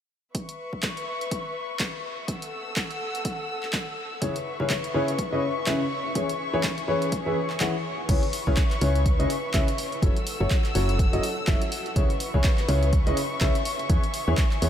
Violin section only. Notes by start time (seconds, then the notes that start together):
0.35 B4 E5 C#6
2.28 A4 F#5 E6
4.22 B4 E5 C#6
6.15 G#4
8.09 B4 E5 C#6
10.02 A4 F#5 E6
11.96 B4 E5 C#6
13.89 G#4